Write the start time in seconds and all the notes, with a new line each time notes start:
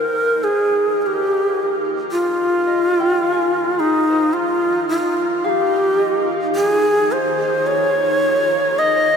Already playing: D#4 F4 A#4 D#5 F5
0.44 G#4
1.02 G#4
1.06 G4
2.12 F4
2.67 D#5
3.00 G5
3.22 F5
3.32 G#5
3.78 D#4 G#4
4.10 C5
4.33 F4
4.89 F4
5.44 G#4 F5
5.49 G4
5.99 D#5
6.55 G#4
7.12 C5
7.67 C#5
8.79 D#5